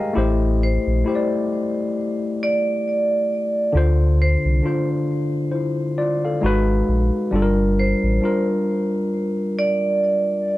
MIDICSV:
0, 0, Header, 1, 4, 480
1, 0, Start_track
1, 0, Tempo, 895522
1, 87, Time_signature, 4, 2, 24, 8
1, 5669, End_track
2, 0, Start_track
2, 0, Title_t, "Vibraphone"
2, 0, Program_c, 0, 11
2, 340, Note_on_c, 0, 72, 66
2, 690, Note_off_c, 0, 72, 0
2, 1302, Note_on_c, 0, 74, 86
2, 1993, Note_off_c, 0, 74, 0
2, 2260, Note_on_c, 0, 72, 73
2, 2610, Note_off_c, 0, 72, 0
2, 4179, Note_on_c, 0, 72, 65
2, 4530, Note_off_c, 0, 72, 0
2, 5138, Note_on_c, 0, 74, 91
2, 5669, Note_off_c, 0, 74, 0
2, 5669, End_track
3, 0, Start_track
3, 0, Title_t, "Tine electric piano"
3, 0, Program_c, 1, 4
3, 0, Control_c, 1, 64, 127
3, 0, Note_on_c, 1, 67, 53
3, 0, Note_on_c, 1, 68, 63
3, 0, Note_on_c, 1, 70, 53
3, 0, Note_on_c, 1, 75, 54
3, 0, Note_on_c, 1, 77, 83
3, 0, Note_on_c, 1, 79, 61
3, 0, Note_on_c, 1, 80, 69
3, 0, Note_on_c, 1, 82, 86
3, 71, Note_on_c, 1, 57, 90
3, 81, Note_off_c, 1, 67, 0
3, 81, Note_on_c, 1, 64, 81
3, 88, Note_on_c, 1, 67, 81
3, 95, Note_off_c, 1, 70, 0
3, 95, Note_off_c, 1, 80, 0
3, 95, Note_off_c, 1, 82, 0
3, 95, Control_c, 1, 64, 0
3, 97, Note_on_c, 1, 72, 84
3, 98, Note_off_c, 1, 77, 0
3, 99, Note_off_c, 1, 68, 0
3, 99, Note_off_c, 1, 79, 0
3, 182, Control_c, 1, 64, 127
3, 210, Note_off_c, 1, 75, 0
3, 471, Note_off_c, 1, 57, 0
3, 476, Note_off_c, 1, 64, 0
3, 479, Note_off_c, 1, 67, 0
3, 483, Note_off_c, 1, 72, 0
3, 559, Note_on_c, 1, 57, 64
3, 568, Note_on_c, 1, 64, 68
3, 576, Note_on_c, 1, 67, 67
3, 585, Note_on_c, 1, 72, 64
3, 616, Note_off_c, 1, 72, 0
3, 618, Note_on_c, 1, 74, 71
3, 1320, Note_off_c, 1, 57, 0
3, 1324, Note_off_c, 1, 64, 0
3, 1328, Note_off_c, 1, 67, 0
3, 1349, Note_off_c, 1, 74, 0
3, 1997, Note_on_c, 1, 50, 98
3, 2008, Note_on_c, 1, 62, 68
3, 2015, Control_c, 1, 64, 0
3, 2015, Note_on_c, 1, 65, 79
3, 2022, Note_on_c, 1, 72, 101
3, 2101, Control_c, 1, 64, 127
3, 2394, Note_off_c, 1, 50, 0
3, 2399, Note_off_c, 1, 62, 0
3, 2402, Note_off_c, 1, 65, 0
3, 2406, Note_off_c, 1, 72, 0
3, 2478, Note_on_c, 1, 50, 59
3, 2485, Note_on_c, 1, 62, 57
3, 2495, Note_on_c, 1, 65, 73
3, 2502, Note_on_c, 1, 72, 70
3, 2950, Note_off_c, 1, 72, 0
3, 2956, Note_on_c, 1, 72, 59
3, 2959, Note_on_c, 1, 64, 50
3, 2971, Note_off_c, 1, 65, 0
3, 3189, Note_off_c, 1, 72, 0
3, 3191, Note_off_c, 1, 64, 0
3, 3205, Note_on_c, 1, 74, 74
3, 3208, Note_on_c, 1, 65, 64
3, 3239, Note_off_c, 1, 50, 0
3, 3243, Note_off_c, 1, 62, 0
3, 3337, Note_off_c, 1, 74, 0
3, 3339, Note_off_c, 1, 65, 0
3, 3348, Note_on_c, 1, 77, 65
3, 3352, Note_on_c, 1, 69, 56
3, 3437, Note_on_c, 1, 56, 88
3, 3445, Note_on_c, 1, 63, 77
3, 3453, Note_on_c, 1, 66, 86
3, 3454, Control_c, 1, 64, 0
3, 3462, Note_on_c, 1, 71, 117
3, 3558, Control_c, 1, 64, 127
3, 3575, Note_off_c, 1, 77, 0
3, 3577, Note_off_c, 1, 69, 0
3, 3840, Note_off_c, 1, 56, 0
3, 3845, Note_off_c, 1, 63, 0
3, 3848, Note_off_c, 1, 66, 0
3, 3853, Note_off_c, 1, 71, 0
3, 3919, Note_on_c, 1, 55, 86
3, 3926, Note_on_c, 1, 62, 81
3, 3934, Control_c, 1, 64, 0
3, 3934, Note_on_c, 1, 65, 78
3, 3943, Note_on_c, 1, 69, 71
3, 3975, Note_off_c, 1, 69, 0
3, 3978, Note_on_c, 1, 70, 93
3, 4044, Control_c, 1, 64, 127
3, 4315, Note_off_c, 1, 55, 0
3, 4318, Note_off_c, 1, 62, 0
3, 4322, Note_off_c, 1, 65, 0
3, 4344, Note_off_c, 1, 70, 0
3, 4397, Note_on_c, 1, 55, 62
3, 4406, Note_on_c, 1, 62, 57
3, 4413, Note_on_c, 1, 65, 70
3, 4422, Note_on_c, 1, 70, 80
3, 5159, Note_off_c, 1, 55, 0
3, 5163, Note_off_c, 1, 62, 0
3, 5167, Note_off_c, 1, 65, 0
3, 5171, Note_off_c, 1, 70, 0
3, 5669, End_track
4, 0, Start_track
4, 0, Title_t, "Sub bass"
4, 0, Program_c, 2, 38
4, 90, Note_on_c, 2, 33, 109
4, 420, Note_off_c, 2, 33, 0
4, 467, Note_on_c, 2, 34, 91
4, 556, Note_off_c, 2, 34, 0
4, 2009, Note_on_c, 2, 38, 122
4, 2340, Note_off_c, 2, 38, 0
4, 2387, Note_on_c, 2, 36, 91
4, 2475, Note_off_c, 2, 36, 0
4, 3450, Note_on_c, 2, 32, 107
4, 3659, Note_off_c, 2, 32, 0
4, 3691, Note_on_c, 2, 34, 97
4, 3810, Note_off_c, 2, 34, 0
4, 3927, Note_on_c, 2, 31, 106
4, 4259, Note_off_c, 2, 31, 0
4, 4306, Note_on_c, 2, 33, 103
4, 4395, Note_off_c, 2, 33, 0
4, 5669, End_track
0, 0, End_of_file